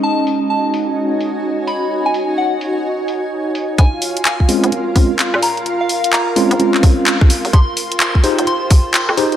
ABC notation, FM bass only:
X:1
M:4/4
L:1/16
Q:"Swing 16ths" 1/4=128
K:Bbm
V:1 name="FM bass" clef=bass
z16 | z16 | B,,,3 F,,,4 B,,,3 B,,,3 B,,3- | B,,3 F,,,4 B,,,2 F,,, F,,,4 z F,,, |
F,,,3 C,,4 F,,,3 F,,,3 F,,3 |]